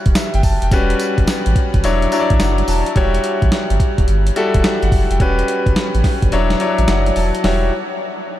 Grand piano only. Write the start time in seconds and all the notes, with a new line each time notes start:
Already playing: G3 E4 F#4 C#5
0.16 E5
0.35 G5
0.44 A5
0.63 G5
0.72 G3 C#4 F#4 B4
1.84 F#3 D4 E4 C#5
2.12 F#3 D4 E4 C#5 D5
2.20 D5
2.31 E5
2.40 F#5
2.69 A5
2.96 G3 E4 F#4 C#5
4.36 G3 E4 F#4 A4
4.65 E5
4.84 F#5
5.11 G5
5.20 G3 C#4 F#4 B4
6.32 F#3 D4 E4 C#5
6.60 F#3 D4 E4 C#5 E5
6.89 F#5
7.17 A5
7.45 G3 E4 F#4 C#5